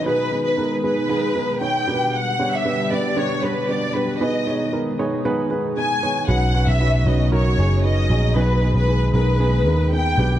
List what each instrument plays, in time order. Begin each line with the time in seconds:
Already playing: analog synth pad D#3
0.05 analog synth pad B2 G#3 D#4 G#4, upright piano B2 B3 D#4 G#4 B4, violin section B4
0.31 upright piano B3 D#4 G#4 B4
0.45 violin section B4
0.57 upright piano B3 D#4 G#4 A#4
0.84 upright piano B3 D#4 G#4 B4, violin section B4
1.09 upright piano B3 D#4 G#4 B4
1.36 upright piano B3 D#4 G#4 B4
1.61 upright piano B3 D#4 G#4 C#5, violin section G5
1.87 upright piano B2 B3 D4 G4 A#4, analog synth pad D3 G3 D4 G4
1.94 upright piano B4
2.14 violin section F#5
2.39 upright piano B3 D4 G4 C#5
2.54 violin section E5
2.65 upright piano B3 D4 G4 B4
2.91 upright piano B3 D4 G4 B4, violin section D5
3.16 upright piano B3 D4 G4 D5, violin section C#5
3.42 upright piano B3 D4 G4 C#5, violin section B4
3.69 upright piano B3 D4 G4 B4, violin section D5
3.95 upright piano B3 D4 G4 B4, violin section B4
4.19 upright piano B2 B3 D#4 G#4 B4, analog synth pad D#3 G#3 D#4 G#4, violin section D#5
4.47 upright piano B3 D#4 G#4 C#5
4.73 upright piano B3 D#4 G#4 A#4
4.99 upright piano B3 D#4 G#4 C#5
5.25 upright piano B3 D#4 G#4 B4
5.50 upright piano B3 D#4 G#4 B4
5.77 upright piano B3 D#4 G#4 B4, violin section G#5
6.03 upright piano B3 D#4 G#4 C#5
6.27 picked electric bass B1, upright piano B2 C#4 D#4 F#4 B4, analog synth pad C#3 F#3 B3 C#4 F#4, violin section F#5
6.54 upright piano C#4 D#4 F#4 B4
6.67 picked electric bass B1, violin section E5
6.80 upright piano C#4 D#4 F#4 B4
7.06 picked electric bass B1, upright piano C#4 D#4 F#4 B4, violin section D#5
7.32 upright piano C#4 D#4 F#4 A#4, violin section C#5
7.58 picked electric bass F#1, upright piano C#4 D#4 F#4 G#4
7.84 upright piano C#4 D#4 F#4 B4, violin section D#5
8.10 picked electric bass A#1, upright piano C#4 D#4 F#4 G#4
8.36 picked electric bass B1, upright piano B2 B3 D#4 G#4 B4, analog synth pad B2 D#3 G#3 G#4, violin section B4
8.62 upright piano B3 D#4 G#4 B4
8.74 picked electric bass B1, violin section B4
8.88 upright piano B3 D#4 G#4 B4
9.14 picked electric bass B1, upright piano B3 D#4 G#4 A#4, violin section B4
9.40 upright piano B3 D#4 G#4 B4
9.66 picked electric bass D#2, upright piano B3 D#4 G#4 A#4
9.93 upright piano B3 D#4 G#4 B4, violin section G5
10.17 picked electric bass B1, upright piano B2 B3 D4 G4 B4, analog synth pad D3 G3 D4 G4